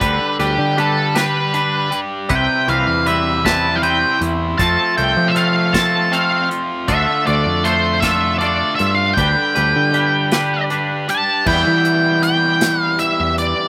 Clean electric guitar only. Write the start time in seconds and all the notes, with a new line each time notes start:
0.00 G3 D4 G4 B4
0.39 G3 D4 G4 B4
0.77 G3 D4 G4 B4
1.15 G3 D4 G4 B4
1.53 G3 D4 G4 B4
2.29 G3 C4 E4 B4
2.68 G3 C4 E4 B4
3.05 G3 C4 E4 B4
3.45 G3 C4 E4 B4
3.82 G3 C4 E4 B4
4.59 A3 C4 F4 A4
4.97 A3 C4 F4 A4
5.36 A3 C4 F4 A4
5.73 A3 C4 F4 A4
6.11 A3 C4 F4 A4
6.88 A3 D4 F4 A4
7.26 A3 D4 F4 A4
7.64 A3 D4 F4 A4
8.03 A3 D4 F4 A4
8.40 A3 D4 F4 A4
9.17 G3 D4 G4 B4
9.55 G3 D4 G4 B4
9.94 G3 D4 G4 B4
10.32 G3 D4 G4 B4
10.70 G3 D4 G4 B4
11.46 E3 G3 B3 E4